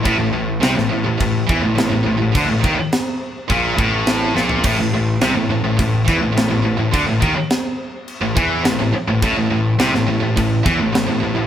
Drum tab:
CC |x---x---x---x---|x---x---x---x---|x---x---x---x---|x---x---x---x---|
SD |----oo------o---|----o-------o-o-|----o-----o-o---|----o-------o---|
FT |----------------|---------------o|----------------|----------------|
BD |o-------o-o-----|o-o-----o-o-----|o-------o-o-----|o-o-------o-----|

CC |x---x---x---x---|
SD |----oo----o-o---|
FT |----------------|
BD |o-------o-o-----|